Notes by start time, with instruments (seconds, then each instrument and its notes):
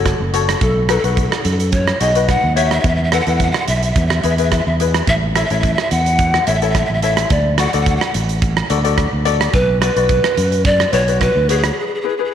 Already playing: fingered electric bass F#1, ukulele F#4 A4 C#5, pan flute A4
0.06 kick, cross-stick, closed hi-hat
0.20 fingered electric bass F#1
0.34 ukulele F#4 A4 C#5, closed hi-hat
0.49 cross-stick, closed hi-hat
0.61 fingered electric bass B1, pan flute A4, kick, closed hi-hat
0.89 ukulele D#4 F#4 B4, pan flute A4, cross-stick, closed hi-hat
0.98 pan flute A4
1.04 fingered electric bass B1, ukulele D#4 F#4 B4, pan flute A4, closed hi-hat
1.13 pan flute A4
1.17 pan flute A4, kick, closed hi-hat
1.28 pan flute A4, cross-stick
1.36 pan flute A4
1.43 fingered electric bass F#2, pan flute A4, closed hi-hat
1.51 pan flute A4
1.59 pan flute A4, closed hi-hat
1.72 pan flute C#5, kick, closed hi-hat
1.88 cross-stick
2.00 fingered electric bass B1, ukulele D#4 F#4 G#4, pan flute D#5, closed hi-hat
2.15 ukulele D#4 F#4 B4, closed hi-hat
2.29 pan flute F#5, kick, cross-stick, closed hi-hat
2.44 fingered electric bass D#2
2.56 ukulele D#4 F#4 C#5, pan flute E5, closed hi-hat
2.65 pan flute E5
2.71 pan flute E5, cross-stick, closed hi-hat
2.80 fingered electric bass E2, pan flute E5, closed hi-hat
2.84 pan flute E5, kick
2.96 pan flute E5
3.04 pan flute E5
3.12 ukulele E4 A4 B4, pan flute F#5, cross-stick, closed hi-hat
3.20 pan flute F#5
3.27 fingered electric bass E2, ukulele E4 A4 B4, pan flute F#5, closed hi-hat
3.36 pan flute F#5
3.40 pan flute F#5, kick, closed hi-hat
3.51 pan flute F#5, cross-stick
3.58 pan flute F#5
3.68 fingered electric bass B1, pan flute E5, closed hi-hat
3.76 pan flute E5
3.83 pan flute E5, closed hi-hat
3.92 pan flute E5
3.96 fingered electric bass E2, pan flute E5, kick, closed hi-hat
4.06 pan flute E5, cross-stick
4.14 pan flute E5
4.21 fingered electric bass E2, ukulele E4 G#4 B4, pan flute E5, closed hi-hat
4.29 pan flute E5
4.37 ukulele E4 G#4 B4, pan flute E5, closed hi-hat
4.44 pan flute E5
4.51 pan flute E5, kick, cross-stick, closed hi-hat
4.58 pan flute E5
4.66 fingered electric bass E2, pan flute E5
4.80 ukulele E4 G#4 B4, closed hi-hat
4.94 cross-stick, closed hi-hat
5.07 fingered electric bass A1, pan flute E5, kick, closed hi-hat
5.36 ukulele E4 A4 C#5, pan flute E5, cross-stick, closed hi-hat
5.45 pan flute E5
5.50 fingered electric bass A1, ukulele E4 A4 C#5, pan flute E5, closed hi-hat
5.60 pan flute E5, kick, closed hi-hat
5.67 pan flute E5
5.74 pan flute E5
5.78 pan flute E5, cross-stick
5.91 fingered electric bass E2, pan flute F#5, closed hi-hat
6.06 closed hi-hat
6.19 kick, closed hi-hat
6.34 cross-stick
6.47 fingered electric bass A1, ukulele E4 A4 C#5, pan flute E5, closed hi-hat
6.55 pan flute E5
6.62 ukulele E4 A4 C#5, pan flute E5, closed hi-hat
6.70 pan flute E5
6.75 pan flute E5, kick, cross-stick, closed hi-hat
6.86 pan flute E5
6.90 fingered electric bass A1, pan flute E5
7.02 ukulele E4 A4 C#5, pan flute E5, closed hi-hat
7.17 cross-stick, closed hi-hat
7.30 fingered electric bass D2, pan flute D5, kick, closed hi-hat
7.58 ukulele F#4 A4 D5, pan flute F#5, cross-stick, closed hi-hat
7.67 pan flute F#5
7.73 fingered electric bass D2, ukulele F#4 A4 D5, pan flute F#5, closed hi-hat
7.81 pan flute F#5
7.86 pan flute F#5, kick, closed hi-hat
7.97 pan flute F#5
8.01 pan flute F#5, cross-stick
8.14 fingered electric bass A1, closed hi-hat
8.29 closed hi-hat
8.42 kick, closed hi-hat
8.57 cross-stick
8.70 fingered electric bass D2, ukulele F#4 A4 D5, closed hi-hat
8.84 ukulele F#4 A4 D5, closed hi-hat
8.98 kick, cross-stick, closed hi-hat
9.13 fingered electric bass D2
9.25 ukulele F#4 A4 D5, closed hi-hat
9.41 cross-stick, closed hi-hat
9.54 fingered electric bass B1, pan flute B4, kick, closed hi-hat
9.81 ukulele F#4 B4 D5, pan flute B4, cross-stick, closed hi-hat
9.96 fingered electric bass B1, ukulele F#4 B4 D5, closed hi-hat
10.09 kick, closed hi-hat
10.24 cross-stick
10.37 fingered electric bass F#2, closed hi-hat
10.52 closed hi-hat
10.65 pan flute D5, kick, closed hi-hat
10.80 cross-stick
10.93 fingered electric bass B1, ukulele F#4 B4 D5, pan flute C#5, closed hi-hat
11.08 ukulele F#4 B4 D5, closed hi-hat
11.21 pan flute B4, kick, cross-stick, closed hi-hat
11.36 fingered electric bass D2
11.49 ukulele F#4 B4 C#5, pan flute G#4, closed hi-hat
11.58 pan flute G#4
11.64 pan flute G#4, cross-stick, closed hi-hat
11.72 pan flute G#4
11.79 pan flute G#4
11.87 pan flute G#4
11.95 pan flute G#4
12.01 ukulele E4 G#4 B4, pan flute G#4
12.09 pan flute G#4
12.17 ukulele E4 G#4 B4, pan flute G#4
12.25 pan flute G#4